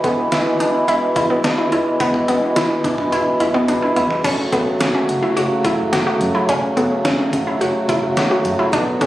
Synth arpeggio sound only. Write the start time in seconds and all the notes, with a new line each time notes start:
0.04 B3
0.32 E4
0.60 D4
0.88 E4
1.16 E4
1.30 B3
1.44 D4
1.58 E4
1.72 E4
2.00 B3
2.28 B3
2.56 E4
2.84 D4
3.12 E4
3.40 E4
3.54 B3
3.68 D4
3.82 E4
3.96 E4
4.24 C#4
4.52 B3
4.80 C#4
4.95 C#4
5.23 E4
5.37 F#4
5.65 E4
5.93 F#4
6.07 F#4
6.35 E4
6.49 C#4
6.77 B3
7.05 C#4
7.19 C#4
7.47 E4
7.61 F#4
7.89 E4
8.17 F#4
8.31 F#4
8.59 E4
8.73 D4
9.01 C#4